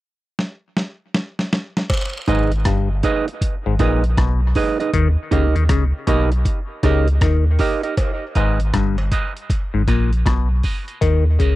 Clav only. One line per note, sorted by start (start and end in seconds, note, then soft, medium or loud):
2.28 2.50 G#2 medium
2.66 2.89 G2 medium
3.66 3.74 G#2 medium
3.80 4.02 A#2 medium
4.18 4.40 B2 medium
4.94 5.08 D#3 medium
5.31 5.46 C#3 medium
5.55 5.64 D#3 medium
5.69 5.84 C#3 medium
6.07 6.30 B2 medium
6.83 7.06 C#3 medium
7.22 7.44 D#3 medium
8.36 8.59 G#2 medium
8.74 8.96 G2 medium
9.74 9.82 G#2 medium
9.88 10.10 A#2 medium
10.26 10.48 B2 medium
11.01 11.24 D#3 medium
11.39 11.56 C#3 medium